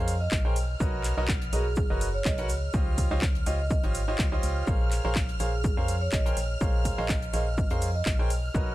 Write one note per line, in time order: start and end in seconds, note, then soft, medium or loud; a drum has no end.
0.00 0.28 F2 loud
0.00 0.13 G#4 medium
0.00 0.13 A#4 medium
0.00 0.13 C5 medium
0.00 0.13 C#5 medium
0.00 0.13 F5 medium
0.00 8.75 F6 medium
0.08 open hi-hat loud
0.08 ride medium
0.08 shaker medium
0.21 0.61 D#5 medium
0.31 0.58 A#1 loud
0.31 kick loud
0.31 snare loud
0.31 clap loud
0.31 shaker medium
0.45 0.55 G#4 medium
0.45 0.55 A#4 medium
0.45 0.55 C5 medium
0.45 0.55 C#5 medium
0.45 0.55 G5 loud
0.56 0.76 B1 medium
0.56 open hi-hat loud
0.56 ride medium
0.56 shaker medium
0.80 1.13 B1 loud
0.80 1.14 F#4 medium
0.80 1.14 A#4 medium
0.80 1.14 B4 medium
0.80 1.14 C#5 medium
0.80 1.14 D#5 medium
0.80 kick loud
0.80 shaker medium
1.04 clap soft
1.04 open hi-hat loud
1.04 ride medium
1.04 shaker medium
1.17 1.49 B1 medium
1.17 1.27 F#4 loud
1.17 1.27 A#4 loud
1.17 1.27 B4 medium
1.17 1.27 C#5 medium
1.17 1.27 D#5 loud
1.28 kick loud
1.28 snare loud
1.28 clap loud
1.28 shaker medium
1.42 closed hi-hat soft
1.53 1.86 B1 medium
1.53 1.64 F#4 medium
1.53 1.70 G#4 loud
1.53 1.64 A#4 medium
1.53 1.64 B4 medium
1.53 1.64 C#5 medium
1.53 1.64 D#5 medium
1.53 open hi-hat loud
1.53 ride medium
1.53 shaker medium
1.76 kick loud
1.76 shaker medium
1.90 2.22 F#1 loud
1.90 2.07 F#4 medium
1.90 2.07 A#4 medium
1.90 2.07 B4 medium
1.90 2.07 C#5 medium
1.90 2.07 D#5 medium
2.01 open hi-hat loud
2.01 ride medium
2.01 shaker medium
2.14 2.23 C#5 medium
2.25 2.51 B1 loud
2.25 2.43 D#5 medium
2.25 kick loud
2.25 snare loud
2.25 clap loud
2.25 shaker medium
2.38 2.48 F#4 medium
2.38 2.48 A#4 medium
2.38 2.48 B4 medium
2.38 2.48 C#5 medium
2.38 2.48 F#5 loud
2.38 closed hi-hat soft
2.49 2.69 C#2 medium
2.49 snare soft
2.49 open hi-hat loud
2.49 ride medium
2.49 shaker medium
2.73 3.07 C#2 loud
2.73 3.08 F4 medium
2.73 3.08 G4 medium
2.73 3.08 C5 medium
2.73 3.08 C#5 medium
2.73 3.08 D#5 medium
2.73 kick loud
2.73 shaker medium
2.98 kick medium
2.98 open hi-hat loud
2.98 ride medium
2.98 shaker medium
3.11 3.43 C#2 medium
3.11 3.21 F4 loud
3.11 3.21 G4 medium
3.11 3.21 C5 medium
3.11 3.21 C#5 loud
3.11 3.21 D#5 loud
3.22 kick loud
3.22 snare loud
3.22 clap loud
3.22 shaker medium
3.35 closed hi-hat soft
3.46 3.80 C#2 loud
3.46 3.58 F4 medium
3.46 3.58 G4 medium
3.46 3.58 C5 medium
3.46 3.58 C#5 medium
3.46 3.58 D#5 medium
3.46 3.57 D#5 loud
3.46 open hi-hat loud
3.46 ride medium
3.46 shaker medium
3.59 3.68 D#5 medium
3.70 4.19 D#5 medium
3.70 kick loud
3.70 shaker medium
3.83 4.15 G#1 loud
3.83 4.00 F4 medium
3.83 4.00 G4 medium
3.83 4.00 C5 medium
3.83 4.00 C#5 medium
3.83 4.00 D#5 medium
3.83 closed hi-hat soft
3.94 open hi-hat loud
3.94 ride medium
3.94 shaker medium
4.08 4.24 F4 medium
4.08 4.24 G4 medium
4.08 4.24 C5 medium
4.08 4.24 C#5 medium
4.08 4.24 D#5 loud
4.18 4.39 C#2 loud
4.18 kick loud
4.18 snare loud
4.18 clap loud
4.18 shaker medium
4.32 4.65 F4 medium
4.32 4.65 G4 medium
4.32 4.65 C5 medium
4.32 4.65 C#5 medium
4.32 4.65 D#5 loud
4.43 4.63 C#2 medium
4.43 open hi-hat loud
4.43 ride medium
4.43 shaker medium
4.67 5.01 A#1 loud
4.67 5.01 G#4 medium
4.67 5.01 A#4 medium
4.67 5.01 C5 medium
4.67 5.01 C#5 medium
4.67 5.01 F5 medium
4.67 kick loud
4.67 shaker medium
4.91 clap soft
4.91 open hi-hat loud
4.91 ride medium
4.91 shaker medium
5.05 5.36 A#1 medium
5.05 5.14 G#4 loud
5.05 5.14 A#4 loud
5.05 5.14 C5 medium
5.05 5.14 C#5 loud
5.05 5.14 F5 loud
5.15 kick loud
5.15 snare loud
5.15 clap loud
5.15 shaker medium
5.29 closed hi-hat soft
5.40 5.73 A#1 loud
5.40 5.57 G#4 loud
5.40 5.51 G#4 medium
5.40 5.51 A#4 medium
5.40 5.51 C5 medium
5.40 5.51 C#5 medium
5.40 5.51 F5 medium
5.40 open hi-hat loud
5.40 ride medium
5.40 shaker medium
5.64 kick loud
5.64 shaker loud
5.77 6.09 F2 loud
5.77 5.94 G#4 medium
5.77 5.94 A#4 medium
5.77 5.94 C5 medium
5.77 5.94 C#5 medium
5.77 5.94 F5 medium
5.88 open hi-hat loud
5.88 ride medium
5.88 shaker medium
6.01 6.10 C#5 medium
6.12 6.32 A#1 loud
6.12 6.30 D#5 medium
6.12 kick loud
6.12 snare loud
6.12 clap loud
6.12 shaker medium
6.26 6.35 G#4 medium
6.26 6.35 A#4 medium
6.26 6.35 C5 medium
6.26 6.35 C#5 medium
6.26 6.35 G5 loud
6.26 closed hi-hat soft
6.37 6.57 A#1 medium
6.37 snare soft
6.37 open hi-hat loud
6.37 ride medium
6.37 shaker medium
6.61 6.94 A#1 loud
6.61 6.95 G#4 medium
6.61 6.95 A#4 medium
6.61 6.95 C5 medium
6.61 6.95 C#5 medium
6.61 6.95 F5 medium
6.61 kick loud
6.61 shaker medium
6.85 kick medium
6.85 open hi-hat loud
6.85 ride medium
6.85 shaker medium
6.98 7.30 A#1 loud
6.98 7.08 G#4 loud
6.98 7.08 A#4 medium
6.98 7.08 C5 loud
6.98 7.08 C#5 loud
6.98 7.14 D#5 medium
6.98 7.08 F5 loud
7.09 kick loud
7.09 snare loud
7.09 clap loud
7.09 shaker loud
7.22 closed hi-hat soft
7.33 7.67 A#1 medium
7.33 7.45 G#4 medium
7.33 7.45 A#4 medium
7.33 7.45 C5 medium
7.33 7.45 C#5 medium
7.33 7.50 D#5 medium
7.33 7.45 F5 medium
7.33 open hi-hat loud
7.33 ride medium
7.33 shaker medium
7.58 kick loud
7.58 shaker medium
7.70 8.03 F2 loud
7.70 7.87 G#4 medium
7.70 7.87 A#4 medium
7.70 7.87 C5 medium
7.70 7.87 C#5 medium
7.70 7.87 F5 medium
7.70 closed hi-hat soft
7.82 open hi-hat loud
7.82 ride medium
7.82 shaker medium
7.95 8.35 D#5 medium
8.06 8.32 A#1 loud
8.06 kick loud
8.06 snare loud
8.06 clap loud
8.06 shaker medium
8.19 8.29 G#4 medium
8.19 8.29 A#4 medium
8.19 8.29 C5 medium
8.19 8.29 C#5 medium
8.19 8.29 G5 loud
8.30 8.50 B1 medium
8.30 open hi-hat loud
8.30 ride medium
8.30 shaker medium
8.55 8.75 B1 loud
8.55 8.75 F#4 medium
8.55 8.75 A#4 medium
8.55 8.75 B4 medium
8.55 8.75 C#5 medium
8.55 8.75 D#5 medium
8.55 kick loud
8.55 shaker medium